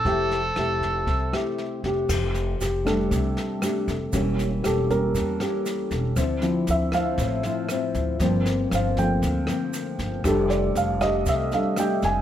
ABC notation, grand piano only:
X:1
M:4/4
L:1/8
Q:1/4=118
K:F
V:1 name="Grand piano"
[Aeg]8 | z2 G A3 z2 | z2 A B3 z2 | z2 e f3 z2 |
z2 f g3 z2 | A d f _e =e f g _a |]
V:2 name="Grand piano"
z8 | z3 [G,A,D] z4 | [G,B,^C]3 [G,B,C] z4 | z [F,CE] z6 |
[F,B,C]3 [F,A,B,C] z4 | [G,A,D] z4 [G,A,D] z2 |]